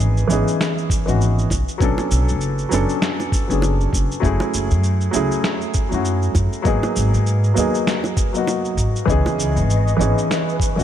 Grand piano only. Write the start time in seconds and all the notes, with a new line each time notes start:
Already playing: E3 B3 C#4 D#4 G#4
0.28 E3 B3 C#4
0.32 D#4 G#4
1.06 E3 B3 C#4 D#4 F#4
1.78 F#3 B3 C#4
1.82 D4 A4
2.69 F#3 B3 C#4
2.73 D4 A4
3.47 F#3 B3 C#4 D4
3.52 G#4
4.20 F#3 A3 C#4
4.24 E4 G#4
5.11 F#3 A3 C#4
5.15 E4 G#4
5.89 F#3 A3 C#4
5.93 E4 F#4
6.62 F#3 A#3 B3 D#4
6.68 G#4
7.54 F#3 A#3 B3
7.58 D#4 G#4
8.33 F#3 A#3 B3
8.37 D#4 F#4
9.06 E3 B3 C#4 D#4
9.11 G#4
9.97 E3 B3 C#4 D#4
10.02 G#4
10.76 E3 B3 C#4 D#4 F#4